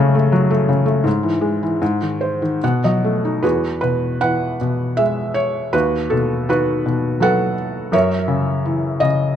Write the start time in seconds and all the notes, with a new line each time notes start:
Already playing: F#2 C#3 F#3 A3 C#4 G#4 A4 C#5
0.15 A3
0.32 F#3
0.50 A3
0.69 C#3
0.86 A3
1.04 G#2
1.23 E3
1.41 G#3
1.63 E3
1.82 G#2
2.02 D#3
2.21 C5
2.42 D#3
2.64 B2 F#5
2.84 F#3 D#5
3.04 A3
3.25 D#4
3.43 E2 F#4 G#4 B4
3.81 B2 B4
4.21 E3 B4 F#5
4.61 B2
4.97 G#3 E5
5.34 C#5
5.73 D#2 F#4 B4
6.10 B2 A4
6.49 D#3 F#4 B4
6.86 B2
7.20 F#3 A4 B4 F#5
7.92 F#2 A#4 C#5 E5
8.28 C#3
8.66 E3
9.00 C#3 D#5